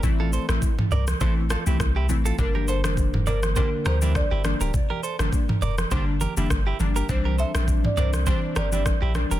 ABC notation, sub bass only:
X:1
M:4/4
L:1/16
Q:"Swing 16ths" 1/4=102
K:Gdor
V:1 name="Sub bass" clef=bass
A,,,3 A,,, z2 C,,2 A,,,3 C,, C,,2 A,,,2 | G,,,3 F,,,3 G,,,3 z D,,3 G,,,2 D,,, | z3 G,,, z2 F,,,2 G,,,3 F,,, G,,,2 G,,,2 | C,,3 B,,,3 C,,3 z G,,,3 B,,,2 E,,, |]